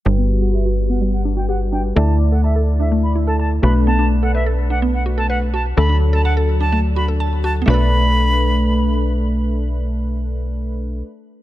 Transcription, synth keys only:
\new Staff \with { instrumentName = "Synth keys" } { \time 4/4 \key b \minor \tempo 4 = 126 <g fis' b'>1 | <a e' d''>2.~ <a e' d''>8 <a d' b'>8~ | <a d' b'>2.~ <a d' b'>8 r8 | <fis d' a'>1 |
<a d' b'>1~ | <a d' b'>1 | }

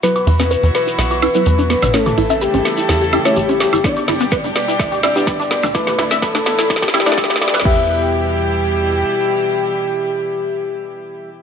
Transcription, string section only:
\new Staff \with { instrumentName = "String section" } { \clef bass \time 4/4 \key e \dorian \tempo 4 = 126 << { <b, fis e' fis'>1 | <cis a e' a'>1 | <b, g d' g'>1 | <a, e d' e'>1 |
<b, e g e' g'>1~ | <b, e g e' g'>1 | } \\ { e1~ | e1 | d1~ | d1 |
r1 | r1 | } >> }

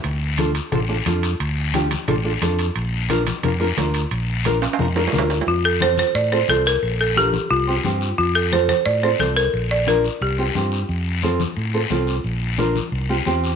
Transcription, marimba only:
\new Staff \with { instrumentName = "Marimba" } { \time 4/4 \key f \major \tempo 4 = 177 r1 | r1 | r1 | r1 |
f'8 a'8 c''8 c''8 d''8 c''8 a'8 bes'8~ | bes'8 a'8 g'4 f'4. r8 | f'8 a'8 c''8 c''8 d''8 c''8 a'8 bes'8~ | bes'8 d''8 bes'4 g'4. r8 |
r1 | r1 | }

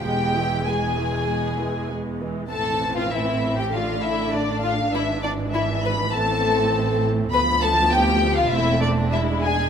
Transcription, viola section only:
\new Staff \with { instrumentName = "Viola section" } { \clef bass \time 4/4 \key a \minor \tempo 4 = 99 << { b8 gis8 b8 gis8 b8 gis8 b8 gis8 | c'2 d'2~ | d'2 c'2 | b2 c'4 d'4 | } \\ { gis8 e8 gis8 e8 gis8 e8 gis8 e8 | e2 d2 | e1 | f2 a4 gis4 | } >> }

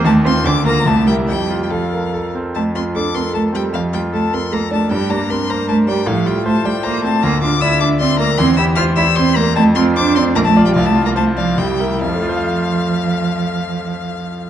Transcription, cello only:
\new Staff \with { instrumentName = "Cello" } { \time 3/4 \key f \major \tempo 4 = 151 a8 c'8 d'8 bes8 a8 g8 | g4 f4. r8 | a8 c'8 d'8 c'8 a8 g8 | f8 g8 a8 c'8 bes8 a8 |
g8 bes8 c'8 bes8 a8 g8 | f8 g8 a8 g8 bes8 a8 | bes8 d'8 e'8 d'8 c'8 bes8 | c'8 e'8 f'8 e'8 c'8 bes8 |
a8 c'8 d'8 c'8 bes16 a8 g16 | f16 a8 bes16 a8 f8 g4 | f2.~ | f2. | }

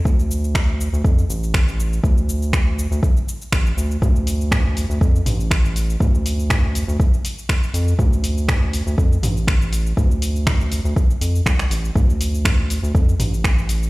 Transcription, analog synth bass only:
\new Staff \with { instrumentName = "Analog synth bass" } { \clef bass \time 4/4 \key d \minor \tempo 4 = 121 d,4.~ d,16 d,16 f,8 a,,4. | d,4.~ d,16 d,16 r4 a,,8 d,8 | d,4.~ d,16 d,16 f,8 a,,4. | d,4.~ d,16 d,16 r4. f,8 |
d,4.~ d,16 d,16 f,8 a,,4. | d,4.~ d,16 d,16 r8 f,8 c,8 a,,8 | d,4.~ d,16 d,16 f,8 a,,4. | }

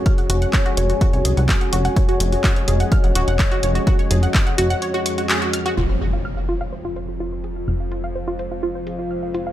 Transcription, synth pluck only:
\new Staff \with { instrumentName = "Synth pluck" } { \time 4/4 \key f \phrygian \tempo 4 = 126 f'''16 ges''16 ges'16 ges''16 des''16 ges'16 des''16 ges'16 ges'16 des''16 aes'16 ges''16 f'''16 ges''16 ges'16 ges''16 | des''16 ges'16 des''16 ges'16 ges'16 des''16 aes'16 ges''16 f'''16 ges''16 ges'16 ges''16 des''16 ges'16 des''16 ges'16 | ges'16 des''16 aes'16 ges''16 f'''16 ges''16 ges'16 ges''16 des''16 ges'16 des'''16 ges'16 aes'16 ges'16 f'''16 ges'16 | f'16 c''16 aes'16 f''16 f'''16 f''16 f'16 f''16 c''16 f'16 c''16 f'16 f'16 c''16 aes'16 f''16 |
f'''16 f''16 f'16 f''16 c''16 f'16 c''16 f'16 f'16 c''16 aes'16 f''16 f'''16 f''16 f'16 f''16 | }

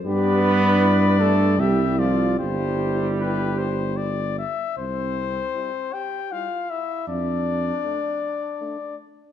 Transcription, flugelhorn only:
\new Staff \with { instrumentName = "Flugelhorn" } { \time 3/4 \key c \major \tempo 4 = 78 b'4. a'8 g'8 f'8 | g'2~ g'8 r8 | c'4. g'8 f'8 e'8 | d'2~ d'8 r8 | }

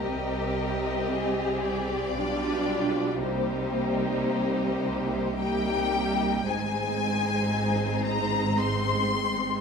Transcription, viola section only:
\new Staff \with { instrumentName = "Viola section" } { \time 3/4 \key c \minor \tempo 4 = 56 <g c'>2 <g d'>4 | <g bes>2 <g bes>4 | \key aes \lydian <aes c'>2. | }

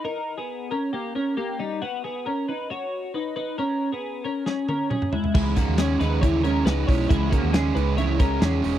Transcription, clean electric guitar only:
\new Staff \with { instrumentName = "Clean electric guitar" } { \time 4/4 \key cis \dorian \tempo 4 = 136 <dis' ais'>8. <b gis'>8. <cis' ais'>8 <ais g'>8 <cis' ais'>8 <ais g'>8 <g dis'>8 | <b fis'>8 <b gis'>8 <cis' ais'>8 <dis' b'>8 <fis' cis''>4 <dis' b'>8 <dis' b'>8 | <cis' ais'>8. <b gis'>8. <cis' ais'>8 <cis' gis'>8 <cis' ais'>8 <cis' gis'>8 <gis e'>8 | <gis e'>8 <ais fis'>8 <cis' gis'>8 <dis' b'>8 <e' cis''>8 <cis' ais'>8 <dis' b'>8 <e' cis''>8 |
<gis e'>8 <ais fis'>8 <cis' gis'>8 <dis' b'>8 <e' cis''>8 <cis' ais'>8 <cis' gis'>4 | }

